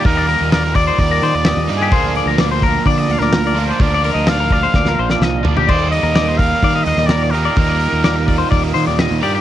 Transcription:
<<
  \new Staff \with { instrumentName = "Clean electric guitar" } { \time 4/4 \key ees \major \tempo 4 = 127 bes'16 d''16 bes'8 d''16 bes'16 d''16 c''16 d''16 bes'16 c''16 d''16 ees''8 d''16 g'16 | c''8 d''16 bes'16 d''16 c''16 bes'8 d''16 ees''16 f''16 d''16 bes'16 d''16 bes'16 d''16 | bes'16 d''16 bes'8 d''16 bes'16 d''16 c''16 d''16 bes'16 c''16 d''16 ees''8 d''16 g'16 | c''8 d''16 bes'16 d''16 c''16 bes'8 d''16 ees''16 f''16 ees''16 bes'16 d''16 bes'16 d''16 |
bes'16 d''16 bes'8 d''16 bes'16 d''16 c''16 d''16 bes'16 c''16 d''16 ees''8 d''16 g'16 | }
  \new Staff \with { instrumentName = "Trumpet" } { \time 4/4 \key ees \major bes'4 bes'8 d''4.~ \tuplet 3/2 { d''8. r16 aes'8~ } | aes'4 r8 bes'8 \tuplet 3/2 { d''4 bes'8~ bes'4 c''8 } | \tuplet 3/2 { d''4 ees''8 } f''2~ f''8 r8 | d''8 ees''4 f''4 ees''8 d''8 bes'8~ |
bes'2~ bes'8 r4 g'16 g'16 | }
  \new Staff \with { instrumentName = "Overdriven electric guitar" } { \clef bass \time 4/4 \key ees \major <ees, bes, ees g bes ees'>2.~ <ees, bes, ees g bes ees'>8 <ees, bes, ees g bes ees'>8 | <bes, f bes d' f'>2.~ <bes, f bes d' f'>8 <bes, f bes d' f'>8 | <bes, f bes d' f'>2.~ <bes, f bes d' f'>8 <bes, f bes d' f'>8 | <ees, bes, ees g bes ees'>2.~ <ees, bes, ees g bes ees'>8 <ees, bes, ees g bes ees'>8 |
<ees, bes, ees g bes ees'>2.~ <ees, bes, ees g bes ees'>8 <ees, bes, ees g bes ees'>8 | }
  \new Staff \with { instrumentName = "Fingered electric bass" } { \clef bass \time 4/4 \key ees \major ees,8. ees,4~ ees,16 ees,8 ees16 ees,8 ees,16 g,8 | d,8. d,4~ d,16 d8 d,16 d,4~ d,16 | d,8. d,4~ d,16 d,8 bes,,8 c,8 d,8 | ees,8. ees,4~ ees,16 ees8 ees,16 ees,4~ ees,16 |
ees,8. ees,4~ ees,16 ees,8 ees16 ees,8 ees,16 g,8 | }
  \new DrumStaff \with { instrumentName = "Drums" } \drummode { \time 4/4 <hho bd>8 hho8 <hho sn>8 <hho bd>8 <hho bd>8 hho8 <hho sn>8 hho8 | <hho bd>8 hho8 <hho sn>8 <hho bd>8 <hho bd>8 hho16 sn16 <hho sn>8 hho8 | <hho bd>8 hho8 <hho sn>8 <hho bd>8 <bd sn>16 sn8 sn16 sn8 tomfh16 tomfh16 | <cymc bd>8 hho8 <hho sn>8 <hho bd>8 <hho bd>8 hho16 sn16 <hho sn>8 hho8 |
<hho bd>8 hho8 <hho sn>8 <hho bd>8 <hho bd>8 hho16 sn16 <hho sn>8 hho8 | }
>>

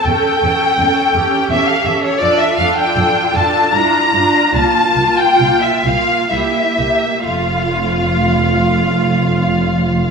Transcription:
<<
  \new Staff \with { instrumentName = "Violin section" } { \time 3/4 \key f \major \tempo 4 = 73 g''2 e''16 f''16 e''16 cis''16 | d''16 e''16 f''16 g''8. a''8 bes''4 | a''8. g''8 e''16 f''8 e''4 | f''2. | }
  \new Staff \with { instrumentName = "Violin section" } { \time 3/4 \key f \major g''2 e''16 f''16 e''16 cis''16 | d''16 e''16 f''16 g''8. a''8 bes''4 | a''8. g''8 e''16 f''8 e''4 | f'2. | }
  \new Staff \with { instrumentName = "Cello section" } { \time 3/4 \key f \major a'4 a'8 g'4. | f'2 e'8 d'8 | f'2 e'8 r8 | f,2. | }
  \new Staff \with { instrumentName = "Viola section" } { \time 3/4 \key f \major <cis' a'>8 <cis' a'>8 <cis' a'>8 <cis' a'>8 <cis' a'>8 <cis' a'>8 | <d' a'>8 <d' a'>8 <d' a'>8 <d' a'>8 <d' f'>8 <d' f'>8 | <bes f'>8 <bes f'>8 <bes f'>8 <bes f'>8 <bes g'>8 <bes g'>8 | <a f'>2. | }
  \new Staff \with { instrumentName = "Double bass section" } { \clef bass \time 3/4 \key f \major e,8 e,8 e,8 e,8 e,8 e,8 | f,8 f,8 f,8 f,8 g,8 g,8 | c,8 c,8 c,8 c,8 c,8 c,8 | f,,2. | }
>>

